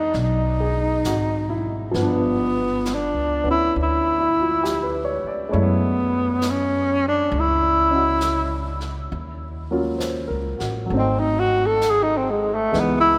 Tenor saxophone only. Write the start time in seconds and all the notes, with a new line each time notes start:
Already playing: D#4
0.23 D#4
2.03 B3
2.94 D4
3.51 E4
3.83 E4
5.61 B3
6.51 C#4
7.08 D4
7.40 E4
10.98 C4
11.20 D#4
11.40 F#4
11.66 A4
11.90 G#4
12.03 D#4
12.18 C4
12.31 G#3
12.54 A3
12.80 B3
13.00 E4